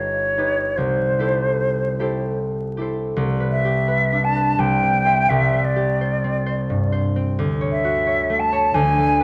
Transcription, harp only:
0.00 0.80 G1 medium
0.00 0.36 D#4 soft
0.00 0.37 G4 soft
0.00 0.37 B4 soft
0.00 0.38 D#5 soft
0.00 0.81 F5 soft
0.38 0.81 D#4 soft
0.38 1.19 G4 soft
0.38 0.82 B4 soft
0.38 0.82 D#5 soft
0.77 3.15 C2 soft
1.19 1.98 E4 soft
1.19 1.98 G4 soft
1.19 1.99 A4 soft
1.19 1.99 C5 soft
1.99 2.77 E4 soft
1.99 2.77 G4 soft
1.99 2.78 A4 soft
1.99 2.78 C5 soft
2.77 6.68 E4 soft
2.77 3.64 G4 soft
2.77 3.20 A4 soft
2.81 5.04 C5 soft
3.16 4.57 C2 medium
3.40 3.87 B4 soft
3.65 5.75 G4 soft
3.88 4.35 B4 soft
4.12 4.63 D4 soft
4.36 4.63 B4 soft
4.58 5.29 C2 medium
4.83 6.23 C4 soft
5.05 5.52 C5 soft
5.05 8.77 E5 soft
5.30 7.41 C2 medium
5.53 6.00 C5 soft
5.76 7.40 G4 soft
6.01 6.45 C5 soft
6.24 7.15 C4 soft
6.46 6.91 C5 soft
6.70 7.41 G2 soft
6.92 7.41 C5 soft
7.16 7.41 C4 soft
7.39 8.73 D2 medium
7.61 8.05 C#5 soft
7.84 9.23 F#4 soft
8.07 8.51 C#5 soft
8.30 8.97 A3 soft
8.53 8.77 C#5 soft
8.74 9.23 D2 medium
8.98 9.23 A3 soft
9.20 9.23 B4 soft

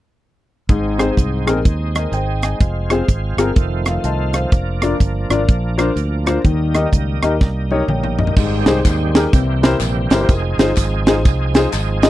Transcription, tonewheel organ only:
0.69 3.54 G#3 medium
0.69 2.59 C4 medium
0.69 2.59 D#4 medium
2.61 4.51 C4 medium
2.61 3.55 F4 medium
3.55 4.51 D#3 medium
3.55 6.42 F3 medium
3.55 4.51 A3 medium
3.55 4.51 F4 medium
4.52 8.33 A#3 medium
4.52 6.43 D4 medium
6.45 8.35 G3 medium
6.45 8.35 D#4 medium
8.38 9.32 D#3 medium
8.38 10.28 G3 medium
8.38 9.32 G#3 medium
8.38 12.10 C4 medium
8.38 10.28 G4 medium
9.34 10.29 E3 medium
9.34 10.29 A#3 medium
10.30 12.10 F3 medium
10.30 12.10 G#3 medium
10.30 12.10 D#4 medium
10.30 12.10 G#4 medium

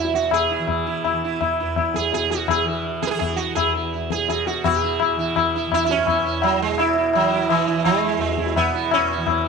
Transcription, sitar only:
0.00 0.15 E4 medium
0.15 0.33 F#4 medium
0.33 0.83 G#4 medium
0.50 0.67 E4 soft
0.86 1.03 E4 soft
1.04 1.21 E4 soft
1.24 1.40 E4 soft
1.41 1.57 E4 soft
1.60 1.76 E4 soft
1.77 1.94 E4 soft
1.96 2.13 G#4 loud
2.14 2.31 G#4 medium
2.31 2.50 F#4 medium
2.50 2.66 G#4 medium
2.68 2.84 E4 soft
3.02 3.07 G#4 loud
3.07 3.18 G#4 medium
3.07 3.11 B4 medium
3.19 3.38 G#4 medium
3.36 3.55 F#4 medium
3.55 3.73 G#4 medium
3.75 3.92 E4 soft
3.94 4.10 E4 soft
4.12 4.28 G#4 medium
4.29 4.47 G#4 medium
4.47 4.65 F#4 medium
4.65 4.81 E4 soft
4.65 5.15 G#4 medium
4.83 4.99 E4 soft
5.02 5.17 E4 soft
5.19 5.35 E4 soft
5.36 5.53 E4 soft
5.55 5.71 E4 soft
5.74 5.84 E4 loud
5.85 5.90 E4 medium
5.91 6.45 C#4 loud
6.08 6.24 E4 soft
6.26 6.42 E4 soft
6.43 6.61 F#3 medium
6.62 6.80 G#3 medium
6.79 6.95 E4 medium
6.98 7.14 E4 soft
7.15 7.50 F#3 medium
7.33 7.49 E4 soft
7.50 7.85 E3 medium
7.68 7.84 E4 soft
7.85 8.20 G#3 loud
8.04 8.20 E4 soft
8.21 8.57 G#3 medium
8.39 8.55 E4 soft
8.57 8.93 B3 loud
8.75 8.90 E4 soft
8.94 9.42 C#4 loud
9.11 9.27 E4 soft

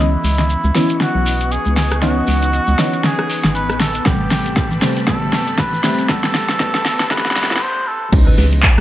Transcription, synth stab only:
0.00 0.73 E3 medium
0.00 0.73 B3 medium
0.00 0.73 C#4 medium
0.00 0.73 D#5 loud
0.75 2.00 E3 medium
0.75 2.00 B3 medium
0.75 2.00 C#4 medium
0.75 2.00 E4 loud
2.02 2.76 E3 medium
2.02 2.76 B3 medium
2.02 2.76 C#4 medium
2.02 2.76 D#4 loud
2.79 3.79 E3 medium
2.79 3.79 B3 medium
2.79 3.79 C#4 medium
2.79 3.79 D#4 medium
4.06 4.79 C3 medium
4.06 4.79 G3 medium
4.06 4.79 A3 medium
4.06 4.79 B3 medium
4.82 5.06 C3 medium
4.82 5.06 G3 medium
4.82 5.06 A3 medium
4.82 5.06 C4 medium
5.07 5.81 C3 medium
5.07 5.81 G3 medium
5.07 5.81 A3 medium
5.07 5.81 B3 loud
5.84 6.07 C3 medium
5.84 6.07 G3 medium
5.84 6.07 A3 medium
5.84 6.07 C4 medium
6.09 6.58 C3 medium
6.09 6.58 G3 medium
6.09 6.58 A3 medium
6.09 6.58 B3 loud
6.60 7.09 C3 medium
6.60 7.09 G3 medium
6.60 7.09 A3 medium
6.60 7.09 B3 loud
7.11 7.35 C3 medium
7.11 7.35 G3 medium
7.11 7.35 A3 medium
7.11 7.35 B3 loud
7.36 7.60 C3 loud
7.36 7.60 G3 medium
7.36 7.60 A3 medium
7.36 7.60 B3 loud
8.12 8.81 E3 medium
8.12 8.81 B3 medium
8.12 8.81 C#4 medium
8.12 8.81 D#4 loud

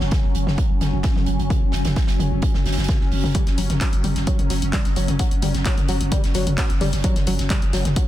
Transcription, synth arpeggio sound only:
3.35 3.46 G3 medium
3.58 3.69 F#3 medium
3.81 3.88 F#3 medium
4.04 4.15 G3 medium
4.27 4.38 F#3 medium
4.50 4.57 F#3 medium
4.73 4.84 G3 medium
4.96 5.07 F#3 medium
5.19 5.27 F#3 medium
5.42 5.53 G3 medium
5.66 5.76 F#3 medium
5.89 5.96 F#3 medium
6.12 6.23 G3 medium
6.35 6.46 F#3 medium
6.58 6.65 F#3 medium
6.81 6.92 G3 medium
7.04 7.15 F#3 medium
7.27 7.34 F#3 medium
7.50 7.61 G3 medium
7.73 7.84 F#3 medium
7.96 8.04 F#3 medium

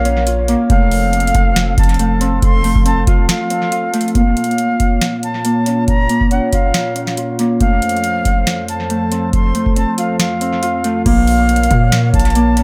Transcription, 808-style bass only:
0.00 0.56 A#1 loud
0.70 1.32 F1 loud
1.35 1.76 F1 loud
1.78 2.40 F1 loud
2.42 2.74 F1 loud
2.75 3.06 F1 loud
3.07 3.28 F1 loud
11.06 11.68 A#1 loud
11.71 12.12 A#2 loud
12.14 12.63 A#1 loud

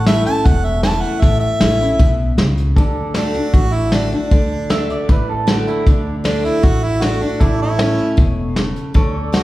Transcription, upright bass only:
0.00 0.23 A1 loud
0.46 1.01 E1 medium
1.23 1.50 A1 medium
1.61 1.94 A1 medium
1.99 2.32 B1 medium
2.38 2.71 C#2 medium
2.76 3.32 D2 medium
3.54 4.09 A1 medium
4.31 4.87 D2 medium
5.09 5.64 A1 medium
5.86 6.42 D2 medium
6.64 7.19 A1 medium
7.41 7.96 A1 medium
8.18 8.73 E1 medium
8.94 9.43 D2 medium

